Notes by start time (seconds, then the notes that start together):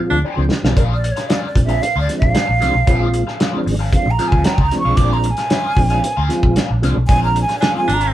Already playing: F3 G#3 C4 F4
0.10 D2 D4, muted clean electric guitar stroke
0.24 D4 G#4 C5 G5, muted fingered electric bass stroke
0.36 C#2 F3 G#3 C4 D4
0.52 muted clean electric guitar stroke, snare
0.62 B1 F3 G#3 C4 D4 G#4 C5 F5, snare
0.76 A#1 D4 G#4 A#4 C5 F5, kick, closed hi-hat
0.95 D5
1.04 muted clean electric guitar stroke, closed hi-hat
1.12 C#5
1.16 D4 G#4 C5 F5, snare, closed hi-hat
1.29 D4 G#4 C5 D5 F5, snare, closed hi-hat
1.46 D5
1.55 A#1 F3 G#3 C4 D4, muted clean electric guitar stroke, kick, closed hi-hat
1.64 E5 F5
1.69 D4 G#4 C5, closed hi-hat
1.82 F5, muted clean electric guitar stroke, closed hi-hat
1.96 D2 D4 G#4 C5 F5
2.00 D5
2.08 F3 G#3 C4 D4, muted clean electric guitar stroke, snare, closed hi-hat
2.18 A#1 F5, kick
2.22 muted clean electric guitar stroke
2.34 D4 G#4 C5 F5, snare, closed hi-hat
2.48 A#1, muted clean electric guitar stroke
2.60 C2 F3 G#3 C4 D4 G#4 C5 F5, snare, closed hi-hat
2.74 B1, muted clean electric guitar stroke
2.87 A#1 F3 G#3 C4 D4 F4 G#4 C5 F5, kick, closed hi-hat
3.14 muted clean electric guitar stroke, closed hi-hat
3.27 D4 G#4 C5 F5, snare
3.40 D4 G#4 C5 F5, snare, closed hi-hat
3.53 F3 G#3 C4 D4
3.66 G#1, muted clean electric guitar stroke, open hi-hat
3.79 D4 G#4 C5 F5
3.92 F3 G#3 C4 D4 F5, muted clean electric guitar stroke, kick, closed hi-hat
4.06 A#1, muted clean electric guitar stroke
4.11 A#5
4.18 F3 G#3 C4 D4 F4 G#4 C5 F5, snare, closed hi-hat
4.28 G#5
4.32 D2 D4 G#4 C5 F5, kick
4.44 D4 G#4 C5 G5 A#5, muted fingered electric bass stroke, snare, closed hi-hat
4.58 C#2 A#5, kick
4.71 F3 G#3 C4 D4, muted clean electric guitar stroke, snare, closed hi-hat
4.79 C#6
4.85 B1 D4 G#4 C5 F5
4.96 A#1 D4 G#4 C5 F5 D6, kick, closed hi-hat
5.13 A#5
5.23 A#5, muted clean electric guitar stroke, closed hi-hat
5.31 G#5
5.37 D4 G#4 C5 F5, snare, closed hi-hat
5.50 D4 G#4 C5 F5, snare, closed hi-hat
5.76 A#1 F3 G#3 C4 D4, muted clean electric guitar stroke, kick, open hi-hat
5.90 D4 G#4 C5 F5, closed hi-hat
6.04 muted clean electric guitar stroke, closed hi-hat
6.17 D2 D4 G#4 C5 F5
6.28 F3 G#3 C4 F4, muted clean electric guitar stroke, snare, closed hi-hat
6.43 A#1, muted clean electric guitar stroke, kick
6.56 D4 G#4 C5 F5, snare, closed hi-hat
6.70 A#1, muted clean electric guitar stroke
6.82 C2 F3 G#3 C4 D4 G#4 C5 F5, snare, closed hi-hat
6.96 B1, muted clean electric guitar stroke
7.08 A#1 F3 G#3 C4 D4 G#4 C5 F5 G#5, kick, closed hi-hat
7.24 A#5
7.35 muted clean electric guitar stroke, closed hi-hat
7.41 G#5
7.48 D4 G#4 C5 F5, snare, closed hi-hat
7.59 D4 G#4 C5 F5 G#5, snare, closed hi-hat
7.74 F3 G#3 C4 F4 G#5
7.88 G#1 D4, muted clean electric guitar stroke, closed hi-hat
7.93 A#5
8.00 D4 G#4 C5 F5, closed hi-hat